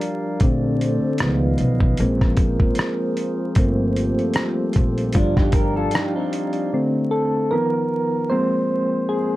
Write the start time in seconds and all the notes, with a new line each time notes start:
Already playing: F3 G3 D4 G4 D5 F5
0.01 closed hi-hat
0.40 A#1 D3 A3 C4 A4 C5, kick, closed hi-hat
0.81 closed hi-hat
1.18 C#2 D#3 F3 C#4 B4 D#5 F5, cross-stick, closed hi-hat
1.23 B3
1.58 B1, closed hi-hat
1.80 kick
1.97 A#1 F3 G#3 A#3 C4 F4 G#4 A#4 C5, closed hi-hat
2.21 kick, cross-stick
2.37 kick, closed hi-hat
2.60 kick
2.75 closed hi-hat
2.79 cross-stick
3.17 closed hi-hat
3.55 G1 F3 G3 A3 A#3 C4 F4 G4 A4, kick, closed hi-hat
3.96 closed hi-hat
4.19 closed hi-hat
4.34 cross-stick, closed hi-hat
4.73 A#1, kick, closed hi-hat
4.98 closed hi-hat
5.13 G1 F3 G3 D4 F4 G4 D5 F5, kick, closed hi-hat
5.37 D#4 G4, kick, cross-stick
5.52 G4 A#4, kick, closed hi-hat
5.76 F4 A4
5.91 D#4 G4, closed hi-hat
5.95 cross-stick
6.16 C4 D#4
6.33 closed hi-hat
6.53 closed hi-hat
6.73 D3 A3 C4
7.11 A4
7.51 D#3 F3 B3 A#4
8.30 F3 G#3 A#3 C4 C5
9.09 G#4